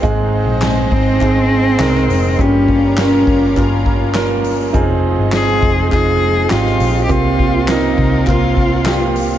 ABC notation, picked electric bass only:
X:1
M:4/4
L:1/16
Q:1/4=102
K:Fm
V:1 name="Picked electric bass" clef=bass
A,,,3 B,,,3 A,,,2 A,,,4 C,,2 F,,,2 | G,,,6 G,,,2 G,,,8 | F,,,3 G,,,3 F,,,2 F,,,4 A,,,2 B,,,2 | C,,6 C,,2 C,,8 |]